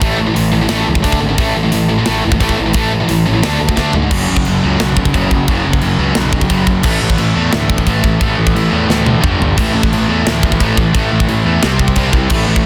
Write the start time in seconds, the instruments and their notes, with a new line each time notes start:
0.01 picked electric bass A1, distorted electric guitar A2 E3 A3, kick, open hi-hat
0.19 distorted electric guitar A2 E3
0.27 distorted electric guitar A2 E3
0.36 picked electric bass A1, distorted electric guitar A2 E3, open hi-hat
0.52 picked electric bass A1, distorted electric guitar A2 E3
0.61 distorted electric guitar A2 E3
0.68 picked electric bass A1, distorted electric guitar A2 E3 A3, snare, open hi-hat
0.87 picked electric bass C#2, distorted electric guitar A2 E3
0.94 distorted electric guitar A2 E3, kick
1.03 picked electric bass D2, distorted electric guitar D3 A3 D4, kick, open hi-hat
1.12 kick
1.20 picked electric bass G#1, distorted electric guitar D3 A3
1.29 distorted electric guitar D3 A3
1.38 picked electric bass A1, distorted electric guitar A2 E3 A3, kick, open hi-hat
1.55 picked electric bass A1, distorted electric guitar A2 E3
1.64 distorted electric guitar A2 E3
1.72 picked electric bass A1, distorted electric guitar A2 E3, open hi-hat
1.89 distorted electric guitar A2 E3
1.98 distorted electric guitar A2 E3
2.06 picked electric bass A1, distorted electric guitar A2 E3 A3, snare, open hi-hat
2.24 picked electric bass F#1, distorted electric guitar A2 E3
2.32 distorted electric guitar A2 E3, kick
2.40 picked electric bass A1, distorted electric guitar A2 E3 A3, kick, open hi-hat
2.49 kick
2.58 picked electric bass A1, distorted electric guitar A2 E3
2.66 distorted electric guitar A2 E3
2.73 picked electric bass A1, distorted electric guitar A2 E3 A3, kick, open hi-hat
2.92 distorted electric guitar A2 E3
3.01 distorted electric guitar A2 E3
3.09 picked electric bass A1, distorted electric guitar A2 E3, open hi-hat
3.26 picked electric bass A1, distorted electric guitar A2 E3
3.35 distorted electric guitar A2 E3
3.43 picked electric bass D2, distorted electric guitar D3 A3 D4, snare, open hi-hat
3.61 picked electric bass D2, distorted electric guitar D3 A3
3.69 distorted electric guitar D3 A3, kick
3.77 picked electric bass D2, distorted electric guitar D3 A3 D4, kick, snare
3.93 picked electric bass G#2, distorted electric guitar D3 A3, floor tom
4.03 distorted electric guitar D3 A3
4.11 picked electric bass F#1, distorted electric guitar F#2 C#3 F#3, kick, crash, china
4.29 picked electric bass F#1, distorted electric guitar F#2 C#3
4.37 kick
4.45 picked electric bass F#1, distorted electric guitar F#2 C#3, china
4.63 picked electric bass C#2, distorted electric guitar F#2 C#3 F#3
4.80 picked electric bass B1, distorted electric guitar F#2 C#3, overdriven electric guitar F#3, snare, china
4.97 distorted electric guitar F#2 C#3, kick
5.05 kick
5.14 picked electric bass F#1, distorted electric guitar F#2 C#3 F#3, kick, china
5.30 picked electric bass F#1, distorted electric guitar F#2 C#3, kick
5.48 picked electric bass F#1, distorted electric guitar F#2 C#3 F#3, kick, china
5.65 picked electric bass F#1, distorted electric guitar F#2 C#3
5.73 kick
5.81 picked electric bass F#1, distorted electric guitar F#2 C#3, china
5.98 picked electric bass C#2, distorted electric guitar F#2 C#3 F#3
6.15 picked electric bass B1, distorted electric guitar F#2 C#3, overdriven electric guitar F#3, snare, china
6.33 distorted electric guitar F#2 C#3, kick
6.41 kick
6.49 picked electric bass F#1, distorted electric guitar F#2 C#3 F#3, kick, china
6.67 picked electric bass F#1, distorted electric guitar F#2 C#3, kick
6.83 picked electric bass A1, distorted electric guitar A2 E3 A3, kick, china, crash
7.02 picked electric bass A1, distorted electric guitar A2 E3
7.10 kick
7.18 picked electric bass A1, distorted electric guitar A2 E3, china
7.35 picked electric bass E2, distorted electric guitar A2 E3 A3
7.52 picked electric bass D2, distorted electric guitar A2 E3, overdriven electric guitar A3, snare, china
7.69 distorted electric guitar A2 E3, kick
7.78 kick
7.87 picked electric bass A1, distorted electric guitar A2 E3 A3, kick, china
8.03 picked electric bass A1, distorted electric guitar A2 E3, kick
8.20 picked electric bass A1, distorted electric guitar A2 E3 A3, kick, china
8.37 picked electric bass A1, distorted electric guitar A2 E3
8.47 kick
8.55 picked electric bass A1, distorted electric guitar A2 E3, china
8.71 picked electric bass E2, distorted electric guitar A2 E3 A3
8.88 picked electric bass D2, distorted electric guitar A2 E3, overdriven electric guitar A3, snare
9.05 distorted electric guitar A2 E3, high tom
9.21 picked electric bass G1, distorted electric guitar G2 D3 G3, kick, mid tom
9.40 picked electric bass G1, distorted electric guitar G2 D3, floor tom
9.57 picked electric bass A1, distorted electric guitar A2 E3 A3, kick, china, crash
9.74 picked electric bass A1, distorted electric guitar A2 E3
9.83 kick
9.92 picked electric bass A1, distorted electric guitar A2 E3, china
10.09 picked electric bass E2, distorted electric guitar A2 E3 A3
10.27 picked electric bass D2, distorted electric guitar A2 E3, overdriven electric guitar A3, snare, china
10.43 distorted electric guitar A2 E3, kick
10.52 kick
10.60 picked electric bass A1, distorted electric guitar A2 E3 A3, kick, china
10.77 picked electric bass A1, distorted electric guitar A2 E3, kick
10.93 picked electric bass A1, distorted electric guitar A2 E3 A3, kick, china
11.12 picked electric bass A1, distorted electric guitar A2 E3
11.20 kick
11.28 picked electric bass A1, distorted electric guitar A2 E3, china
11.45 picked electric bass E2, distorted electric guitar A2 E3 A3
11.62 picked electric bass C2, distorted electric guitar C3 G3 C4, snare, china
11.79 distorted electric guitar C3 G3, kick
11.88 kick
11.96 picked electric bass C2, distorted electric guitar C3 G3 C4, kick, china
12.13 picked electric bass C2, distorted electric guitar C3 G3, kick
12.30 picked electric bass A1, distorted electric guitar A2 E3 A3, kick, crash, china
12.47 picked electric bass A1, distorted electric guitar A2
12.52 distorted electric guitar E3
12.56 kick